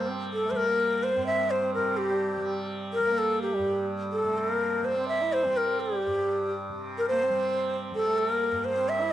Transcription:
0.00 1.16 G2 medium
0.00 1.76 C3 soft
0.00 0.52 G3 medium
0.00 0.10 A#3 medium
0.09 0.20 C4 medium
0.33 0.52 A4 medium
0.44 0.69 A3 medium
0.50 2.37 G3 medium
0.50 0.58 C5 medium
0.56 1.05 A#4 medium
0.67 1.15 A#3 medium
1.03 1.26 C5 medium
1.15 3.58 G2 medium
1.15 1.60 C4 medium
1.26 1.52 E5 medium
1.51 1.74 C5 medium
1.64 2.12 C4 medium
1.74 4.22 C3 medium
1.74 1.99 A#4 medium
1.97 2.70 G4 medium
2.11 2.83 G3 medium
2.37 2.99 G3 medium
2.93 3.20 A#4 medium
2.99 4.82 G3 medium
3.07 3.55 A#3 medium
3.18 3.42 A4 medium
3.42 3.87 G4 medium
3.54 4.02 G3 medium
3.59 6.06 G2 medium
4.12 4.38 A4 medium
4.23 6.69 C3 medium
4.23 4.51 A3 medium
4.38 4.49 A4 medium
4.49 4.97 A#3 medium
4.49 4.86 A#4 medium
4.82 5.45 G3 soft
4.82 5.08 C5 medium
4.98 5.23 C4 medium
5.08 5.34 E5 medium
5.21 5.46 E4 medium
5.33 5.58 C5 medium
5.44 7.29 G3 medium
5.44 5.93 C4 medium
5.57 5.82 A#4 medium
5.80 6.52 G4 medium
5.92 6.63 G3 medium
6.07 8.51 G2 soft
6.69 9.12 C3 medium
6.98 7.08 A#4 medium
7.08 7.24 A#3 medium
7.08 7.77 C5 medium
7.23 7.94 C4 medium
7.29 7.91 G3 medium
7.91 9.13 G3 medium
7.91 8.18 A4 medium
8.07 8.31 A3 medium
8.18 8.29 A4 medium
8.29 8.77 A#3 medium
8.29 8.66 A#4 medium
8.52 9.13 G2 medium
8.65 8.90 C5 medium
8.78 9.01 C4 medium
8.89 9.13 E5 medium
8.99 9.13 E4 medium

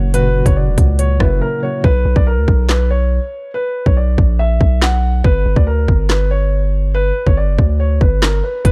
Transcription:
0.00 0.42 F#1 loud
0.00 0.14 A#2 loud
0.00 0.12 C#3 loud
0.00 0.13 F#3 loud
0.00 1.20 A#3 medium
0.00 0.15 F#4 loud
0.00 0.10 C#5 medium
0.12 0.79 A#2 medium
0.12 0.78 C#3 medium
0.12 0.79 F#3 medium
0.12 0.79 F#4 loud
0.12 0.44 B4 loud
0.12 closed hi-hat medium
0.46 0.68 F#1 loud
0.46 0.55 C#5 medium
0.46 kick loud
0.46 closed hi-hat medium
0.56 0.96 D5 medium
0.67 0.77 E1 loud
0.78 1.19 C#2 loud
0.78 kick medium
0.78 closed hi-hat medium
0.99 1.17 C#5 medium
0.99 closed hi-hat medium
1.19 1.41 F#1 loud
1.19 1.52 C#3 medium
1.19 1.52 F#3 medium
1.19 1.53 A#3 medium
1.19 1.53 E4 medium
1.19 1.38 B4 medium
1.19 kick medium
1.19 cross-stick loud
1.41 1.59 A#4 medium
1.62 1.79 C#3 medium
1.62 1.79 F#3 medium
1.62 1.79 A#3 medium
1.62 1.80 F#4 medium
1.62 1.81 C#5 medium
1.84 2.04 B1 loud
1.84 2.14 B4 loud
1.84 kick loud
2.05 2.16 B1 loud
2.16 2.39 B1 loud
2.16 2.25 D5 medium
2.16 kick medium
2.27 2.67 A#4 medium
2.37 2.47 D2 loud
2.48 3.19 B1 loud
2.48 kick medium
2.69 2.87 B4 medium
2.69 snare loud
2.69 clap medium
2.90 3.50 C#5 medium
3.54 3.84 B4 medium
3.86 4.17 B1 loud
3.86 3.95 C#5 medium
3.86 kick loud
3.97 4.37 D5 medium
4.18 4.59 A#1 loud
4.18 kick medium
4.39 4.79 E5 loud
4.61 5.22 B1 loud
4.61 kick medium
4.82 5.22 F#5 loud
4.82 snare loud
4.82 clap loud
5.24 5.45 G1 loud
5.24 5.55 B4 loud
5.24 kick loud
5.46 5.56 G1 loud
5.56 5.87 D2 loud
5.56 5.65 D5 medium
5.56 kick loud
5.67 6.07 A#4 medium
5.88 7.12 G1 loud
5.88 kick medium
6.10 6.27 B4 medium
6.10 snare loud
6.10 clap medium
6.31 6.91 C#5 medium
6.95 7.25 B4 loud
7.27 7.49 G1 loud
7.27 7.36 C#5 medium
7.27 kick medium
7.37 7.77 D5 medium
7.48 7.58 F#1 loud
7.59 7.99 D2 loud
7.59 kick medium
7.80 7.98 C#5 medium
8.01 8.42 G1 loud
8.01 8.19 B4 medium
8.01 kick loud
8.22 8.40 A#4 medium
8.22 snare loud
8.22 clap loud
8.43 8.61 B4 medium
8.65 8.72 E1 loud
8.65 8.72 B4 loud
8.65 kick loud
8.65 closed hi-hat medium

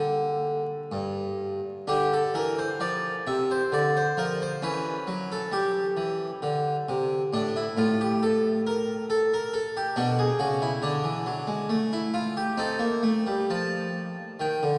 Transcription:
0.00 0.62 D3 soft
0.00 0.62 G4 medium
0.92 1.59 G2 soft
1.87 2.21 D3 medium
1.87 4.57 D4 soft
1.87 2.11 G4 medium
2.13 2.35 A4 medium
2.34 2.67 E3 medium
2.34 2.57 A#4 medium
2.59 2.81 C5 medium
2.80 3.13 F3 medium
2.80 3.26 D5 medium
3.27 3.59 C3 soft
3.27 3.49 E5 medium
3.51 3.73 C5 medium
3.72 4.04 D3 medium
3.72 3.95 D5 medium
3.97 4.18 C5 medium
4.17 4.49 F3 medium
4.17 4.40 A#4 medium
4.42 4.63 C5 medium
4.62 4.95 E3 medium
4.62 6.38 C#4 soft
4.62 5.30 B4 medium
5.07 5.39 F#3 medium
5.32 5.53 A4 medium
5.52 5.84 G3 medium
5.52 7.06 G4 medium
5.97 6.29 E3 soft
6.42 6.75 D3 medium
6.89 7.20 C3 medium
7.33 7.65 A2 medium
7.33 7.55 D4 medium
7.56 7.78 E4 medium
7.77 9.34 A2 medium
7.77 8.00 F4 medium
8.01 8.22 G4 medium
8.23 8.60 A4 medium
8.67 9.04 A#4 medium
9.10 9.32 A4 medium
9.34 9.54 A#4 medium
9.53 9.75 A4 medium
9.77 9.97 G4 medium
9.96 10.27 B2 medium
9.96 10.82 D4 soft
9.96 10.18 F#4 medium
10.19 10.40 G#4 medium
10.39 10.70 C#3 medium
10.39 10.61 F#4 medium
10.62 10.83 E4 medium
10.82 11.03 D3 medium
10.82 11.75 D4 medium
11.04 11.24 E3 medium
11.26 11.47 F#3 medium
11.47 11.68 G#3 medium
11.69 12.32 A3 medium
11.93 12.14 E4 medium
12.14 12.35 F4 medium
12.37 12.58 G4 medium
12.58 12.79 C4 medium
12.58 14.78 D#4 soft
12.58 13.37 A4 medium
12.79 13.02 A#3 medium
13.03 13.25 A3 medium
13.27 13.48 G3 medium
13.50 14.15 F3 medium
13.50 14.41 A5 medium
14.40 14.61 D#3 medium
14.40 14.78 G5 medium
14.63 14.78 D3 medium

